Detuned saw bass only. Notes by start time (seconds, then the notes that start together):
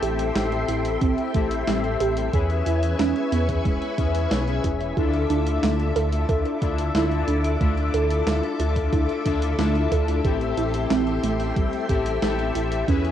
0.03 A1
0.36 A1
0.69 A1
1.02 A1
1.34 A1
1.67 A1
2.01 A1
2.33 E2
2.66 E2
2.99 E2
3.32 E2
3.65 E1
3.98 E2
4.31 B1
4.64 E1
4.97 D2
5.30 D2
5.63 D2
5.96 D2
6.29 D2
6.62 D2
6.95 D2
7.28 D2
7.61 D2
7.94 D2
8.26 D2
8.59 D2
8.93 D2
9.26 D2
9.58 D2
9.92 D2
10.25 A1
10.57 A1
10.90 A1
11.23 A1
11.56 A1
11.89 A1
12.22 A1
12.55 A1
12.88 E2